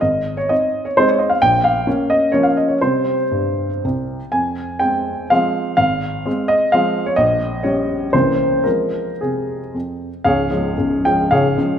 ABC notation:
X:1
M:3/4
L:1/16
Q:1/4=123
K:Fm
V:1 name="Grand piano"
e3 d e3 d c d e f | g2 f4 e2 d f e d | c8 z4 | a4 g4 f4 |
f6 e2 f3 d | e4 d4 c4 | B4 A4 z4 | [Adf]6 g2 [Adf]4 |]
V:2 name="Grand piano" clef=bass
A,,,4 [CE]4 [A,CE]4 | B,,,4 [B,D]4 [F,B,D]4 | [C,G,C]4 G,,4 C,,4 | F,,4 [A,C]4 [F,A,C]4 |
A,,,4 [A,C]4 [F,A,C]4 | B,,,4 [G,D]4 [C,,=E,B,D]4 | [F,A,C]4 C,4 F,,4 | [D,,,D,,]2 [F,A,D]2 [D,,,D,,]2 [F,A,D]2 [D,,,D,,]2 [F,A,D]2 |]